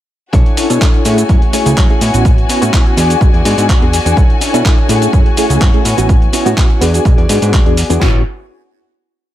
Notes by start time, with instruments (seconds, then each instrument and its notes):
0.33 analog synth bass B1, clean electric guitar D4 E4 A4 C#5, string section F#4 G#5, kick, closed hi-hat, shaker
0.46 closed hi-hat
0.57 reed electric piano C#4 D4 E4 A4, clean electric guitar D4 E4 A4 C#5, open hi-hat, shaker
0.70 analog synth bass B2, reed electric piano D4 E4 A4 C#5, clean electric guitar E4 A4 C#5, closed hi-hat, shaker
0.81 clean electric guitar D4 E4 A4 C#5, kick, clap, closed hi-hat, shaker
0.94 closed hi-hat
1.05 analog synth bass A2, reed electric piano A3 C#4 E4 G#4, clean electric guitar D4 E4 A4 C#5, open hi-hat, shaker
1.18 clean electric guitar E4 A4 C#5, closed hi-hat, shaker
1.29 analog synth bass F#2, clean electric guitar A3 E4 G#4 C#5, kick, closed hi-hat, shaker
1.41 clean electric guitar E4 G#4 C#5, closed hi-hat
1.53 clean electric guitar A3 E4 G#4 C#5, reed electric piano A3 C#4 E4 G#4, open hi-hat, shaker
1.66 analog synth bass C#2, closed hi-hat, shaker
1.77 analog synth bass F#2, clean electric guitar A3 E4 G#4 C#5, kick, clap, shaker
1.90 reed electric piano A3 C#4 E4 G#4, closed hi-hat
2.01 analog synth bass A2, clean electric guitar B3 E4 F#4 C#5, open hi-hat, shaker
2.14 analog synth bass A1, reed electric piano B3 C#4 E4 F#4, closed hi-hat, shaker
2.25 kick, closed hi-hat, shaker
2.38 closed hi-hat
2.49 clean electric guitar B3 E4 F#4 C#5, reed electric piano B3 C#4 E4 F#4, open hi-hat, shaker
2.61 analog synth bass A2, reed electric piano B3 C#4 E4 F#4, clean electric guitar E4 F#4 C#5, closed hi-hat, shaker
2.73 clean electric guitar B3 E4 F#4 C#5, kick, clap, closed hi-hat, shaker
2.86 clean electric guitar E4 F#4 C#5, closed hi-hat
2.97 analog synth bass E2, clean electric guitar B3 F#4 G#4 D5, reed electric piano B3 D4 F#4 G#4, open hi-hat, shaker
3.10 closed hi-hat, shaker
3.21 analog synth bass B1, kick, closed hi-hat, shaker
3.33 analog synth bass E2, clean electric guitar F#4 G#4 D5, closed hi-hat
3.44 analog synth bass G#2, clean electric guitar B3 F#4 G#4 D5, reed electric piano B3 D4 F#4 G#4, open hi-hat, shaker
3.58 analog synth bass G#2, closed hi-hat, shaker
3.68 clean electric guitar B3 G#4 D5, kick, clap, closed hi-hat, shaker
3.82 analog synth bass E2, reed electric piano B3 D4 F#4 G#4, closed hi-hat
3.93 open hi-hat, shaker
4.05 analog synth bass E2, reed electric piano B3 D4 F#4 G#4, clean electric guitar F#4 G#4 D5, closed hi-hat, shaker
4.17 analog synth bass B1, clean electric guitar D4 E4 A4 C#5, kick, closed hi-hat, shaker
4.30 closed hi-hat
4.40 reed electric piano C#4 D4 E4 A4, clean electric guitar D4 E4 A4 C#5, open hi-hat, shaker
4.53 analog synth bass B2, reed electric piano D4 E4 A4 C#5, clean electric guitar E4 A4 C#5, closed hi-hat, shaker
4.64 clean electric guitar D4 E4 A4, kick, clap, shaker
4.77 clean electric guitar E4 A4 C#5, closed hi-hat
4.88 analog synth bass A2, reed electric piano A3 C#4 E4 G#4, clean electric guitar D4 E4 A4 C#5, open hi-hat, shaker
5.02 closed hi-hat, shaker
5.13 analog synth bass F#2, clean electric guitar E4 G#4 C#5, kick, closed hi-hat, shaker
5.25 clean electric guitar E4 G#4 C#5, closed hi-hat
5.36 clean electric guitar A3 E4 G#4 C#5, reed electric piano A3 C#4 E4 G#4, open hi-hat, shaker
5.50 analog synth bass C#2, closed hi-hat, shaker
5.60 analog synth bass F#2, clean electric guitar A3 E4 G#4 C#5, kick, clap, shaker
5.73 reed electric piano A3 C#4 E4 G#4, closed hi-hat
5.84 analog synth bass A2, clean electric guitar B3 E4 F#4 C#5, open hi-hat, shaker
5.97 analog synth bass A1, reed electric piano B3 C#4 E4 F#4, closed hi-hat, shaker
6.09 kick, closed hi-hat, shaker
6.22 closed hi-hat
6.32 clean electric guitar B3 E4 F#4 C#5, reed electric piano B3 C#4 E4 F#4, open hi-hat, shaker
6.45 analog synth bass A2, reed electric piano B3 C#4 E4 F#4, clean electric guitar E4 F#4 C#5, closed hi-hat, shaker
6.57 clean electric guitar B3 E4 F#4 C#5, kick, clap, closed hi-hat, shaker
6.69 clean electric guitar E4 F#4 C#5, closed hi-hat
6.81 analog synth bass E2, clean electric guitar B3 F#4 G#4 D5, reed electric piano B3 D4 F#4 G#4, open hi-hat, shaker
6.93 clean electric guitar F#4 G#4 D5, closed hi-hat, shaker
7.05 analog synth bass B1, kick, closed hi-hat, shaker
7.17 analog synth bass E2, clean electric guitar F#4 G#4 D5, closed hi-hat
7.29 analog synth bass G#2, reed electric piano B3 D4 F#4 G#4, clean electric guitar B3 F#4 G#4 D5, open hi-hat, shaker
7.42 analog synth bass G#2, closed hi-hat, shaker
7.53 clean electric guitar B3 F#4 G#4, kick, clap, shaker
7.66 analog synth bass E2, reed electric piano B3 D4 F#4 G#4, closed hi-hat
7.77 open hi-hat, shaker
7.90 analog synth bass E2, reed electric piano B3 D4 F#4 G#4, clean electric guitar F#4 G#4 D5, closed hi-hat, shaker
8.00 analog synth bass A1, reed electric piano B3 C#4 E4 F#4, clean electric guitar B3 E4 F#4 C#5, kick, snare